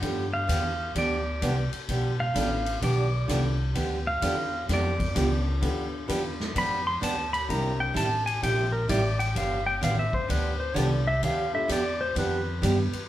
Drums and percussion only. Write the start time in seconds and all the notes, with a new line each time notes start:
0.02 kick, ride
0.49 kick, hi-hat pedal, ride
0.95 kick, ride
1.42 kick, hi-hat pedal, ride
1.73 ride
1.89 kick, ride
2.35 kick, hi-hat pedal, ride
2.66 ride
2.82 kick, ride
3.29 kick, hi-hat pedal, ride
3.75 kick, ride
4.22 kick, hi-hat pedal, ride
4.69 kick, snare, ride
5.00 kick, ride
5.16 kick, hi-hat pedal, ride
5.62 kick, ride
6.09 kick, hi-hat pedal, ride
6.40 snare
6.56 kick, ride
7.03 kick, hi-hat pedal, ride
7.34 ride
7.49 kick, ride
7.96 kick, hi-hat pedal, ride
8.27 ride
8.43 kick, ride
8.89 kick, hi-hat pedal, ride
9.20 ride
9.36 kick, ride
9.82 kick, hi-hat pedal, ride
10.13 kick
10.29 kick, ride
10.76 kick, hi-hat pedal, ride
11.23 kick, ride
11.69 kick, hi-hat pedal, ride
12.16 kick, ride
12.63 kick, hi-hat pedal, ride
12.93 ride